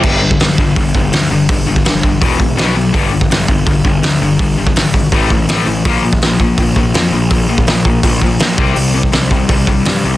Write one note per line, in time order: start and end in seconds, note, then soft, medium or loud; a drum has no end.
0.03 0.35 G1 medium
0.03 0.20 G2 medium
0.03 0.21 D3 medium
0.03 0.21 G3 loud
0.03 kick loud
0.03 crash loud
0.21 0.38 G2 medium
0.21 0.38 D3 medium
0.31 kick medium
0.39 0.55 G1 medium
0.39 0.57 G2 medium
0.39 0.57 D3 medium
0.39 snare loud
0.39 open hi-hat medium
0.58 0.73 G1 medium
0.58 0.75 G2 medium
0.58 0.75 D3 medium
0.58 kick medium
0.76 0.92 G1 medium
0.76 0.93 G2 medium
0.76 0.93 D3 medium
0.76 kick loud
0.76 open hi-hat medium
0.94 1.10 G1 medium
0.94 1.11 G2 medium
0.94 1.11 D3 medium
0.94 kick medium
1.12 1.28 D2 medium
1.12 1.29 G2 medium
1.12 1.29 D3 medium
1.12 snare loud
1.12 open hi-hat medium
1.30 1.46 G1 loud
1.30 1.47 G2 medium
1.30 1.47 D3 medium
1.49 1.64 G1 medium
1.49 1.65 G2 medium
1.49 1.66 D3 medium
1.49 kick loud
1.49 open hi-hat medium
1.67 1.82 G1 medium
1.67 1.83 G2 medium
1.67 1.84 D3 medium
1.76 kick medium
1.85 2.16 G1 medium
1.85 2.01 G2 medium
1.85 2.02 D3 medium
1.85 snare loud
1.85 open hi-hat medium
2.02 2.19 G2 medium
2.02 2.20 D3 medium
2.02 kick medium
2.21 2.37 E1 medium
2.21 2.38 E2 medium
2.21 2.39 B2 loud
2.21 2.39 E3 medium
2.21 kick loud
2.21 open hi-hat medium
2.39 2.59 E1 medium
2.39 2.56 E2 medium
2.39 2.56 B2 medium
2.39 kick medium
2.57 2.73 B1 medium
2.57 2.74 B2 loud
2.57 2.75 F#3 medium
2.57 2.75 B3 loud
2.57 snare loud
2.57 open hi-hat medium
2.75 2.91 B1 medium
2.75 2.92 B2 medium
2.75 2.92 F#3 medium
2.93 3.25 G1 medium
2.93 3.10 G2 medium
2.93 3.11 D3 loud
2.93 3.11 G3 medium
2.93 kick loud
2.93 open hi-hat medium
3.12 3.28 G2 medium
3.12 3.29 D3 medium
3.21 kick medium
3.30 3.46 G1 medium
3.30 3.47 G2 medium
3.30 3.47 D3 medium
3.30 snare loud
3.30 open hi-hat medium
3.48 3.64 G1 medium
3.48 3.65 G2 medium
3.48 3.65 D3 medium
3.48 kick medium
3.66 3.82 G1 medium
3.66 3.83 G2 medium
3.66 3.83 D3 medium
3.66 kick loud
3.66 open hi-hat medium
3.84 4.00 G1 medium
3.84 4.01 G2 medium
3.84 4.02 D3 medium
3.84 kick medium
4.03 4.18 D2 loud
4.03 4.19 G2 medium
4.03 4.20 D3 medium
4.03 snare loud
4.03 open hi-hat medium
4.21 4.37 G1 medium
4.21 4.38 G2 medium
4.21 4.38 D3 medium
4.39 4.55 G1 medium
4.39 4.56 G2 medium
4.39 4.56 D3 medium
4.39 kick loud
4.39 open hi-hat medium
4.57 4.73 G1 medium
4.57 4.74 G2 medium
4.57 4.74 D3 medium
4.67 kick medium
4.75 5.06 G#1 medium
4.75 4.92 G2 medium
4.75 4.93 D3 medium
4.75 snare loud
4.75 open hi-hat medium
4.94 5.11 G2 medium
4.94 5.11 D3 medium
4.94 kick medium
5.12 5.28 A1 medium
5.12 5.29 A2 medium
5.12 5.30 E3 loud
5.12 5.30 A3 loud
5.12 kick loud
5.12 open hi-hat medium
5.30 5.46 A1 medium
5.30 5.47 A2 medium
5.30 5.47 E3 medium
5.30 kick medium
5.48 5.64 A1 medium
5.48 5.66 A2 medium
5.48 5.67 E3 medium
5.48 5.67 A3 medium
5.48 snare loud
5.48 open hi-hat medium
5.67 5.82 A1 medium
5.67 5.83 A2 medium
5.67 5.84 E3 medium
5.85 6.16 A#1 medium
5.85 6.02 A#2 medium
5.85 6.03 F3 medium
5.85 6.03 A#3 loud
5.85 kick loud
5.85 open hi-hat medium
6.04 6.20 A#2 medium
6.04 6.20 F3 medium
6.13 kick medium
6.22 6.37 A#1 medium
6.22 6.38 A#2 medium
6.22 6.39 F3 medium
6.22 snare loud
6.22 open hi-hat medium
6.40 6.55 A#1 medium
6.40 6.57 A#2 medium
6.40 6.57 F3 medium
6.40 kick medium
6.58 6.73 A#1 medium
6.58 6.75 A#2 medium
6.58 6.75 F3 medium
6.58 kick loud
6.58 open hi-hat medium
6.76 6.91 A#1 medium
6.76 6.93 A#2 medium
6.76 6.93 F3 medium
6.76 kick medium
6.94 7.10 F2 medium
6.94 7.11 A#2 medium
6.94 7.11 F3 medium
6.94 snare loud
6.94 open hi-hat medium
7.12 7.28 A#1 medium
7.12 7.29 A#2 medium
7.12 7.29 F3 medium
7.30 7.46 A#1 medium
7.30 7.47 A#2 medium
7.30 7.47 F3 medium
7.30 kick loud
7.30 open hi-hat medium
7.49 7.64 A#1 medium
7.49 7.65 A#2 medium
7.49 7.66 F3 medium
7.58 kick medium
7.67 7.98 A#1 loud
7.67 7.84 A#2 medium
7.67 7.84 F3 medium
7.67 snare loud
7.67 open hi-hat medium
7.85 8.02 A#2 medium
7.85 8.02 F3 medium
7.85 kick medium
8.03 8.19 A#1 medium
8.03 8.20 A#2 medium
8.03 8.20 F3 loud
8.03 kick loud
8.03 open hi-hat medium
8.22 8.37 A#1 medium
8.22 8.38 A#2 medium
8.22 8.39 F3 medium
8.22 kick medium
8.39 8.55 A#1 medium
8.39 8.57 A#2 medium
8.39 8.57 F3 medium
8.39 snare loud
8.39 open hi-hat medium
8.58 8.73 C2 medium
8.58 8.74 C3 medium
8.58 8.75 G3 medium
8.58 8.76 C4 medium
8.58 kick loud
8.76 9.07 C2 loud
8.76 8.92 C3 medium
8.76 8.93 G3 medium
8.76 open hi-hat medium
8.94 9.11 C3 medium
8.94 9.11 G3 medium
9.03 kick medium
9.12 9.28 C2 medium
9.12 9.29 C3 medium
9.12 9.29 G3 medium
9.12 snare loud
9.12 open hi-hat medium
9.31 9.46 C2 medium
9.31 9.47 C3 medium
9.31 9.48 G3 medium
9.31 kick medium
9.49 9.65 C2 medium
9.49 9.66 C3 medium
9.49 9.66 G3 medium
9.49 kick loud
9.49 open hi-hat medium
9.67 9.83 C2 medium
9.67 9.84 C3 medium
9.67 9.84 G3 medium
9.67 kick medium
9.85 10.02 G2 medium
9.85 10.02 C3 medium
9.85 10.02 G3 medium
9.85 snare loud
9.85 open hi-hat medium
10.05 10.17 C2 medium
10.05 10.17 C3 medium
10.05 10.17 G3 medium